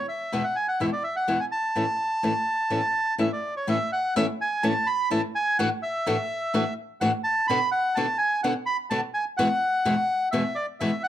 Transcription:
0.08 E5
0.32 E2 B2 E3 G#3 B3 E4
0.44 F#5
0.56 G#5
0.68 F#5
0.80 E2 B2 E3 G#3 B3 E4 E5
0.93 D5
1.04 E5
1.16 F#5
1.28 E2 B2 E3 G#3 B3 E4
1.40 G#5
1.52 A5
1.75 A2 E3 A3 C#4 E4
2.23 A2 E3 A3 C#4 E4
2.70 A2 E3 A3 C#4 E4
3.18 A2 E3 A3 C#4 E4 E5
3.33 D5
3.57 C#5
3.67 A2 E3 A3 C#4 E4 E5
3.93 F#5
4.16 A2 E3 A3 C#4 E4 E5
4.41 G#5
4.63 A2 E3 A3 C#4 E4 A5
4.87 B5
5.10 A2 E3 A3 C#4 E4 A5
5.35 G#5
5.59 A2 E3 A3 D4 F#4 F#5
5.83 E5
6.06 A2 E3 A3 D4 F#4
6.54 A2 E3 A3 D4 F#4
7.01 A2 E3 A3 D4 F#4 F#5
7.24 A5
7.47 B2 D3 B3 D4 F#4 B5
7.72 F#5
7.95 B2 D3 B3 D4 F#4 A5
8.18 G#5
8.43 B2 D3 B3 D4 F#4 F#5
8.66 B5
8.90 B2 D3 B3 D4 F#4 A5
9.14 G#5
9.37 E2 B2 E3 G#3 B3 F#4 F#5
9.85 E2 B2 E3 G#3 B3 F#4
10.31 E2 B2 E3 G#3 B3 F#4 E5
10.55 D5
10.80 E2 B2 E3 G#3 B3 F#4 E5
11.03 F#5

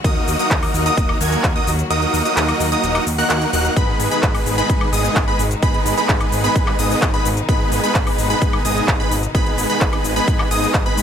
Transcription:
Already playing: F#4
0.04 D#2 D#3 F#3 A#3 D#4 F#4 A#4 D#5 D#6, kick, closed hi-hat, shaker
0.28 D#2, open hi-hat, shaker
0.39 A#3 D#4 F#4 A#4 D#5 D#6, closed hi-hat, shaker
0.51 D#2, kick, clap, closed hi-hat, shaker
0.63 open hi-hat, high woodblock
0.74 D#2, open hi-hat, shaker
0.86 A#3 D#4 F#4 A#4 D#5 D#6, closed hi-hat, shaker
0.97 D#1, kick, closed hi-hat, shaker
1.09 high woodblock
1.21 D#2 A#3 D#4 F#4 A#4 G#5 G#6, open hi-hat, shaker
1.32 closed hi-hat, shaker
1.44 D#2, kick, clap, closed hi-hat, shaker
1.56 A#3 D#4 F#4 A#4 D#5 D#6
1.67 D#2, open hi-hat, shaker
1.79 closed hi-hat, shaker
1.90 D#2 A#3 D#4 F#4 A#4 D#5 D#6, closed hi-hat, shaker
2.02 closed hi-hat
2.14 D#2, open hi-hat, shaker
2.25 A#3 D#4 F#4 A#4 D#5 D#6, closed hi-hat, shaker
2.37 D#2, clap, closed hi-hat, shaker
2.49 closed hi-hat, high woodblock
2.60 D#2, open hi-hat, shaker
2.72 A#3 D#4 F#4 A#4 D#5 D#6, closed hi-hat, shaker
2.83 D#1, closed hi-hat, shaker
2.95 clap, closed hi-hat, high woodblock
3.07 D#2, open hi-hat, shaker
3.18 A#3 D#4 F#4 A#4 F#5 F#6, open hi-hat, shaker
3.30 D#2, clap, closed hi-hat, shaker
3.42 closed hi-hat
3.53 D#1 A#3 D#4 F#4 A#4 F#5 F#6, open hi-hat, shaker
3.65 closed hi-hat, shaker
3.76 G#1 B2 G#3 B3 D#4 G#4 B4 B5, kick, closed hi-hat, shaker
4.00 G#1, open hi-hat, shaker
4.11 G#3 B3 D#4 G#4 B4 B5, closed hi-hat, shaker
4.23 G#1, kick, clap, closed hi-hat, shaker
4.35 open hi-hat, high woodblock
4.46 G#1, open hi-hat, shaker
4.58 G#3 B3 D#4 G#4 B4 B5, closed hi-hat, shaker
4.69 G#2, kick, closed hi-hat, shaker
4.81 high woodblock
4.93 G#1 G#3 B3 D#4 G#4 D#5 D#6, open hi-hat, shaker
5.04 closed hi-hat, shaker
5.16 G#1, kick, clap, closed hi-hat, shaker
5.28 G#3 B3 D#4 G#4 B4 B5
5.39 G#1, open hi-hat, shaker
5.51 closed hi-hat, shaker
5.62 G#1 G#3 B3 D#4 G#4 B4 B5, kick, closed hi-hat, shaker
5.74 closed hi-hat
5.86 G#1, open hi-hat, shaker
5.97 G#3 B3 D#4 G#4 B4 B5, closed hi-hat, shaker
6.09 G#1, kick, clap, closed hi-hat, shaker
6.21 closed hi-hat, high woodblock
6.32 G#1, open hi-hat, shaker
6.44 G#3 B3 D#4 G#4 B4 B5, closed hi-hat, shaker
6.56 G#2, kick, closed hi-hat, shaker
6.67 clap, high woodblock
6.79 G#1 G#3 B3 D#4 G#4 D#5 D#6, open hi-hat, shaker
6.90 open hi-hat, shaker
7.02 G#1, kick, clap, closed hi-hat, shaker
7.14 G#3 B3 D#4 G#4 B4 B5, closed hi-hat
7.25 G#1, open hi-hat, shaker
7.37 closed hi-hat, shaker
7.49 G#1 G#3 B3 D#4 G#4 B4 B5, kick, closed hi-hat, shaker
7.72 G#1, open hi-hat, shaker
7.83 G#3 B3 D#4 G#4 B4 B5, closed hi-hat, shaker
7.95 G#1, kick, clap, closed hi-hat, shaker
8.07 open hi-hat, high woodblock
8.18 G#1, open hi-hat, shaker
8.30 G#3 B3 D#4 G#4 B4 B5, closed hi-hat, shaker
8.42 G#2, kick, closed hi-hat, shaker
8.53 high woodblock
8.65 G#1 G#3 B3 D#4 G#4 D#5 D#6, open hi-hat, shaker
8.77 closed hi-hat, shaker
8.88 G#1, kick, clap, closed hi-hat, shaker
9.00 G#3 B3 D#4 G#4 B4 B5
9.11 G#1, open hi-hat, shaker
9.23 closed hi-hat, shaker
9.35 G#1 G#3 B3 D#4 G#4 B4 B5, kick, closed hi-hat, shaker
9.46 closed hi-hat
9.58 G#1, open hi-hat, shaker
9.70 G#3 B3 D#4 G#4 B4 B5, closed hi-hat, shaker
9.81 G#1, kick, clap, closed hi-hat, shaker
9.93 closed hi-hat, high woodblock
10.04 G#1, open hi-hat, shaker
10.16 G#3 B3 D#4 G#4 B4 B5, closed hi-hat, shaker
10.28 G#2, kick, closed hi-hat, shaker
10.39 clap, high woodblock
10.51 G#1 G#3 B3 D#4 G#4 D#5 D#6, open hi-hat, shaker
10.63 open hi-hat, shaker
10.74 G#1, kick, clap, closed hi-hat, shaker
10.86 G#3 B3 D#4 G#4 B4 B5, closed hi-hat
10.97 G#2, open hi-hat, shaker

